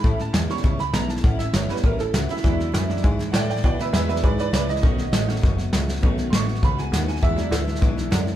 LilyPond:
<<
  \new Staff \with { instrumentName = "Honky-tonk piano" } { \time 4/4 \key e \mixolydian \tempo 4 = 201 b''8 a''8 r8 cis'''4 b''8 ais''8 a''8 | fis''8 e''8 cis''8 b'8 ais'8 a'8 fis'8 e'8~ | e'2~ e'8 r8 <d'' fis'' g''>8 <d'' g''>8 | <d'' g''>8 <b' e''>8 <b' e''>8 <b' e''>8 <b' d''>8 <b' d''>8 <b' d''>8 dis''8~ |
dis''2~ dis''8 r4. | r4 <c''' cis'''>4 b''8 gis''8 fis''8 gis''8 | e''2. r4 | }
  \new Staff \with { instrumentName = "Honky-tonk piano" } { \clef bass \time 4/4 \key e \mixolydian r4. <g b cis'>8 r2 | r4. <g b cis'>8 r2 | <fis gis d'>4. <fis gis d'>8 r2 | r4. <fis gis d'>8 r2 |
<dis a cis'>8 r4 <dis a cis'>8 r2 | <dis a cis'>4. r2 r8 | r8 <fis gis d'>2~ <fis gis d'>8 <fis gis d'>8 r8 | }
  \new Staff \with { instrumentName = "Steel-string acoustic guitar" } { \time 4/4 \key e \mixolydian <a, e g cis' e'>8 <g cis' e'>8 <e g cis' e'>8 <g cis' e'>8 <a, e g cis' e'>8 <g cis' e'>8 <e g cis' e'>8 <g cis' e'>8 | <a, e g cis' e'>8 <g cis' e'>8 <e g cis' e'>8 <g cis' e'>8 <a, e g cis' e'>8 <g cis' e'>8 <e g cis' e'>8 <g cis' e'>8 | <e, b, e gis d' e'>8 <e gis d' e'>8 <e gis d' e'>8 <e gis d' e'>8 <e, b, e gis d' e'>8 <e gis d' e'>8 <e gis d' e'>8 <e gis d' e'>8 | <e, b, e gis d' e'>8 <e gis d' e'>8 <e gis d' e'>8 <e gis d' e'>8 <e, b, e gis d' e'>8 <e gis d' e'>8 <e gis d' e'>8 <e gis d' e'>8 |
<b, dis a b fis'>8 <a b fis'>8 <dis a b fis'>8 <a b fis'>8 <b, dis a b fis'>8 <a b fis'>8 <dis a b fis'>8 <a b fis'>8 | <b, dis a b fis'>8 <a b fis'>8 <b fis'>8 <a b fis'>8 <b, dis a b fis'>8 <a b fis'>8 <dis a b fis'>8 <a b fis'>8 | <e, b, e gis d' e'>8 <e gis d' e'>8 <e gis d' e'>8 <e gis d' e'>8 <e, b, e gis d' e'>8 <e gis d' e'>8 <e gis d' e'>8 <e gis d' e'>8 | }
  \new Staff \with { instrumentName = "Analog synth bass" } { \clef bass \time 4/4 \key e \mixolydian a,4 e,8 e,8 cis,4 b,,4 | a,,4 g,,8 g,,8 a,,4 cis,8 r8 | e,4 fis,4 gis,4 a,4 | b,4 e,4 gis,4 cis,4 |
b,,4 a,,4 fis,,4 cis,4 | b,,4 a,,4 cis,4 dis,4 | e,4 d,4 b,,4 fis,4 | }
  \new DrumStaff \with { instrumentName = "Drums" } \drummode { \time 4/4 <bd sn>8 sn8 <hhp sn>8 sn16 sn16 <bd sn>8 sn8 <hhp sn>8 sn16 sn16 | <bd sn>8 sn8 <hhp sn>8 sn16 sn16 bd8 sn8 <hhp sn>8 sn16 sn16 | <bd sn>8 sn8 <hhp sn>8 sn16 sn16 <bd sn>8 sn8 <hhp sn>8 sn16 sn16 | <bd sn>8 sn8 <hhp sn>8 sn16 sn16 <bd sn>8 sn8 <hhp sn>8 sn16 sn16 |
<bd sn>8 sn8 <hhp sn>8 sn16 sn16 <bd sn>8 sn8 <hhp sn>8 sn16 sn16 | <bd sn>8 sn8 <hhp sn>8 sn16 sn16 <bd sn>8 sn8 <hhp sn>8 sn16 sn16 | <bd sn>8 sn8 <hhp sn>8 sn16 sn16 <bd sn>8 sn8 <hhp sn>8 sn8 | }
>>